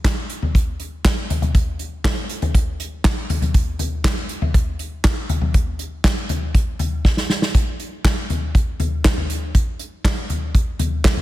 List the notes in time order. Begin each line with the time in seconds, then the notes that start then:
0.04 kick, snare, clap, closed hi-hat
0.30 closed hi-hat
0.43 floor tom
0.55 kick, closed hi-hat
0.80 closed hi-hat
1.05 kick, snare, clap, closed hi-hat
1.30 closed hi-hat, floor tom
1.42 closed hi-hat, floor tom
1.55 kick, closed hi-hat
1.79 closed hi-hat
2.04 kick, snare, clap, closed hi-hat
2.29 closed hi-hat
2.42 closed hi-hat, floor tom
2.55 kick, closed hi-hat
2.80 closed hi-hat
3.04 kick, snare, clap, closed hi-hat
3.30 closed hi-hat, floor tom
3.42 closed hi-hat, floor tom
3.54 kick, closed hi-hat
3.79 closed hi-hat, floor tom
4.04 kick, snare, clap, closed hi-hat
4.29 closed hi-hat
4.42 floor tom
4.54 kick, closed hi-hat
4.79 closed hi-hat
5.04 kick, snare, clap, closed hi-hat
5.29 closed hi-hat, floor tom
5.41 floor tom
5.54 kick, closed hi-hat
5.79 closed hi-hat
6.04 kick, snare, clap, closed hi-hat
6.29 closed hi-hat, floor tom
6.55 kick, closed hi-hat
6.79 closed hi-hat, floor tom
7.05 kick, snare
7.17 snare
7.30 snare
7.42 snare
7.55 kick, closed hi-hat
7.80 closed hi-hat
8.04 kick, snare, clap, closed hi-hat
8.30 closed hi-hat, floor tom
8.55 kick, closed hi-hat
8.80 closed hi-hat, floor tom
9.05 kick, snare, clap, closed hi-hat
9.18 floor tom
9.30 closed hi-hat
9.55 kick, closed hi-hat
9.79 closed hi-hat
10.05 kick, snare, clap, closed hi-hat
10.30 closed hi-hat, floor tom
10.55 kick, closed hi-hat
10.79 closed hi-hat, floor tom
11.04 kick, snare, clap, closed hi-hat
11.17 floor tom